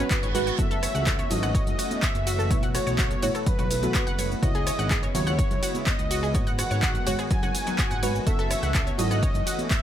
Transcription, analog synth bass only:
0.23 G#1
0.59 F#1
0.95 C#2
1.31 G#1
1.67 F#1
2.15 F#1
2.51 B1
2.87 B1
3.23 A1
3.59 B1
4.07 F#1
4.43 C#2
4.79 G#1
5.15 D#2
5.51 C#2
5.99 C#2
6.35 G#1
6.71 G#1
7.07 F#1
7.43 F#1
7.91 G#1
8.27 F#1
8.63 C#2
8.99 G#1
9.35 F#1

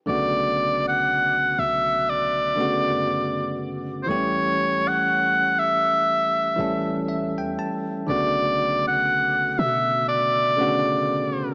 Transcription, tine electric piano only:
0.06 C#3 D3 A3 B3
0.10 F#4
2.56 C#3 D3 A3 B3
2.61 F#4
4.06 E3 G3 A3 B3
4.11 G4
4.16 C#4
6.56 E3 G3 A3 C#4
6.61 A4
7.08 E5
7.38 G5
7.59 A5
8.07 C#3 D3 A3 B3
8.11 F#4
10.56 C#3 A3 B3
10.61 D3 F#4

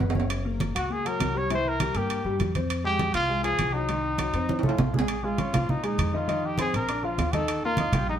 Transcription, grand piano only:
Already playing: B3 B4
0.16 C#4 C#5
0.45 A#3 A#4
0.75 F#4 F#5
0.90 A#3 A#4
1.05 F#3 F#4
1.34 G3 G4
1.50 E3 E4
1.81 G3 G4
1.96 A#3 A#4
2.25 G3 G4
2.55 C4 C5
2.84 G#3 G#4
3.14 F4 F5
3.29 G#3 G#4
3.44 F3 F4
3.74 F#3 F#4
3.89 D#3 D#4
4.19 F#3 F#4
4.34 C4 C5
4.64 A3 A4
4.93 G#3 G#4
5.24 G#3 G#4 G#5
5.38 C#4 C#5 C#6
5.53 F3 F4 F5
5.83 G#3 G#4 G#5
6.13 D#3 D#4 D#5
6.28 D#3 D#4 D#5
6.59 C4 C5 C6
6.89 D4 D5 D6
7.04 F3 F4 F5
7.34 D#3 D#4 D#5
7.65 A#3 A#4 A#5
7.79 D#4 D#5 D#6
7.94 G3 G4 G5

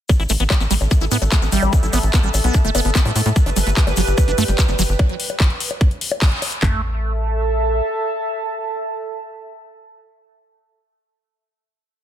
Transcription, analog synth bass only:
0.20 A1
0.30 A1
0.40 A1
0.60 A1
0.71 A1
0.81 A1
1.01 A1
1.11 A2
1.22 A1
1.42 A1
1.52 A1
1.63 A1
1.83 A1
1.93 A1
2.03 A1
2.24 A1
2.34 A1
2.44 B1
2.65 G1
2.75 G1
2.85 G1
3.05 A2
3.16 A2
3.26 A2
3.46 G1
3.56 G1
3.67 G1
3.87 G1
3.97 G1
4.07 G1
4.28 G1
4.38 G2
4.48 G1
4.69 G1
4.79 G1
4.89 G1
6.63 A1

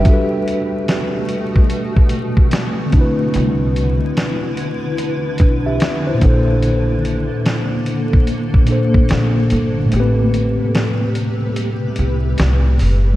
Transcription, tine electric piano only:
Already playing: G4 E5
0.00 G3 D4
0.06 F#4 A4
0.13 B4
2.86 D3 C4
2.93 D4 E4
3.01 B4
5.40 D4 B4
5.66 G4 E5
6.07 E4 C5
6.14 A#2 A#3
6.22 D4 A4
6.29 C5
8.65 A#2 A#3 D4
8.71 A4 C5
9.85 A2 A3
9.93 B3 G4
9.99 C4 B4

